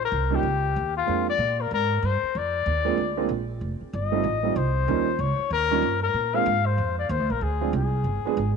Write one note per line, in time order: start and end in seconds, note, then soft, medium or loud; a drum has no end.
0.00 0.11 A#1 medium
0.05 0.37 A#4 medium
0.12 0.42 C2 medium
0.30 0.42 G3 medium
0.30 0.42 A#3 medium
0.30 0.42 C#4 medium
0.30 0.43 D#4 medium
0.30 0.43 F4 medium
0.35 0.96 G4 medium
0.43 0.74 C#2 medium
0.76 1.07 D#2 medium
0.97 1.26 F4 medium
1.06 1.38 F2 medium
1.06 1.24 G#3 medium
1.06 1.25 A#3 medium
1.06 1.25 C4 medium
1.06 1.25 D4 medium
1.06 1.25 F4 medium
1.30 1.63 D5 loud
1.38 1.69 A#2 medium
1.61 1.72 A#4 medium
1.71 2.02 G#2 medium
1.71 2.07 A#4 loud
2.02 2.21 G2 medium
2.02 2.39 C5 medium
2.23 muted upright bass stroke soft
2.35 2.65 F2 medium
2.35 3.31 D5 medium
2.66 2.97 D#2 medium
2.85 2.96 G#3 medium
2.85 2.96 A#3 medium
2.85 2.97 C4 medium
2.85 2.97 D4 medium
2.85 2.97 F4 medium
2.98 3.28 D2 medium
3.17 3.28 G#3 medium
3.17 3.28 A#3 medium
3.17 3.28 C4 medium
3.17 3.28 D4 medium
3.17 3.29 F4 medium
3.29 3.60 A#1 medium
3.61 3.79 F1 medium
3.81 muted upright bass stroke soft
3.93 4.23 G1 medium
3.93 4.58 D#5 medium
4.12 4.23 G3 medium
4.12 4.23 A3 medium
4.12 4.23 C4 medium
4.12 4.24 D#4 medium
4.12 4.23 F4 medium
4.24 4.55 A1 medium
4.43 4.54 G3 medium
4.43 4.55 A3 medium
4.43 4.55 C4 medium
4.43 4.55 D#4 medium
4.43 4.56 F4 medium
4.56 4.87 C2 medium
4.56 5.22 C5 medium
4.88 5.18 D#2 medium
4.88 5.06 G3 medium
4.88 5.06 A#3 medium
4.88 5.06 C#4 medium
4.88 5.06 D#4 medium
4.88 5.06 F4 medium
5.19 5.37 C#2 medium
5.19 5.52 C#5 medium
5.39 muted upright bass stroke soft
5.50 5.82 D#2 medium
5.50 6.00 A#4 loud
5.71 5.82 G3 medium
5.71 5.82 A#3 medium
5.71 5.82 C#4 medium
5.71 5.82 D#4 medium
5.71 5.83 F4 medium
5.82 6.13 G2 medium
6.03 6.37 A#4 loud
6.14 6.45 A#2 medium
6.34 6.45 G#3 medium
6.34 6.45 A#3 medium
6.34 6.46 C4 medium
6.34 6.46 D4 medium
6.34 6.46 F4 medium
6.34 6.68 F5 loud
6.46 6.77 G#2 loud
6.66 6.98 C5 medium
6.78 7.09 F2 medium
6.99 7.12 D5 medium
7.09 7.19 D#2 loud
7.09 7.33 C5 medium
7.19 7.29 D2 medium
7.30 7.40 A#1 medium
7.30 7.45 A#4 medium
7.41 7.72 D2 medium
7.41 7.74 G#4 medium
7.61 7.72 F3 medium
7.61 7.72 G#3 medium
7.61 7.72 C4 medium
7.61 7.72 D4 medium
7.61 7.73 F4 medium
7.73 8.03 C2 loud
7.73 8.53 G#4 medium
8.04 8.23 G1 medium
8.25 8.36 F3 medium
8.25 8.36 G#3 medium
8.25 8.37 B3 medium
8.25 8.36 D4 medium
8.25 8.37 G#4 medium
8.25 muted upright bass stroke soft
8.37 8.57 G#1 medium